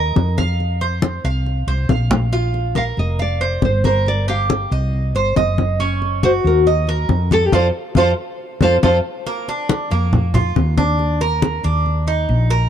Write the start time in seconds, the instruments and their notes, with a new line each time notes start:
Already playing: fretless electric bass D#2, cuban tres A#4
0.16 fretless electric bass F2, high conga
0.38 cuban tres F5, high conga
0.60 high conga
0.81 cuban tres C5, high conga
1.02 high conga
1.24 fretless electric bass C2, cuban tres F5, high conga
1.46 high conga
1.67 fretless electric bass C2, cuban tres C5, high conga
1.89 fretless electric bass A#1, cuban tres F5, high conga
2.11 low conga
2.33 cuban tres F4, high conga
2.54 high conga
2.75 cuban tres A#4, nylon-string guitar F5, high conga
2.97 fretless electric bass F1, nylon-string guitar D#5, high conga
3.19 nylon-string guitar D5, cuban tres F5, high conga
3.41 cuban tres C5, high conga
3.62 fretless electric bass G1, nylon-string guitar C5, high conga
3.84 cuban tres A#4, nylon-string guitar C5, high conga
4.06 nylon-string guitar D5, high conga
4.28 cuban tres G4, nylon-string guitar F5, high conga
4.50 high conga
4.71 fretless electric bass C2, cuban tres D#5, high conga
4.93 high conga
5.14 fretless electric bass G1, cuban tres C5, high conga
5.36 fretless electric bass F#1, cuban tres D#5, high conga
5.58 high conga
5.80 cuban tres C#4, high conga
6.02 high conga
6.23 cuban tres F#4, nylon-string guitar C5, high conga
6.44 fretless electric bass D#2, nylon-string guitar A#4, high conga
6.66 cuban tres D#5, high conga
6.87 cuban tres A#4, high conga
7.09 fretless electric bass F2, high conga
7.31 cuban tres A4, nylon-string guitar A4, high conga
7.52 fretless electric bass F2, cuban tres F4 A4 C5, nylon-string guitar C5 D5 F5, high conga
7.95 fretless electric bass F2, cuban tres F4 A4 C5, nylon-string guitar C5 D5 F5, high conga
8.61 fretless electric bass F2, cuban tres F4 A4 C5, nylon-string guitar C5 D5 F5, high conga
8.83 fretless electric bass F2, cuban tres F4 A4 C5, nylon-string guitar C5 D5 F5, high conga
9.26 cuban tres A#3, high conga
9.48 cuban tres D4, high conga
9.69 high conga
9.91 fretless electric bass F2, cuban tres A#3, high conga
10.13 high conga, low conga
10.34 cuban tres F4, high conga, low conga
10.56 fretless electric bass D#2, high conga
10.78 cuban tres D4, high conga
10.99 high conga
11.21 cuban tres A#4, high conga
11.42 high conga
11.64 fretless electric bass D#2, cuban tres D4, high conga
11.86 high conga
12.07 cuban tres D#4, high conga
12.29 fretless electric bass A#1, high conga
12.50 cuban tres A#4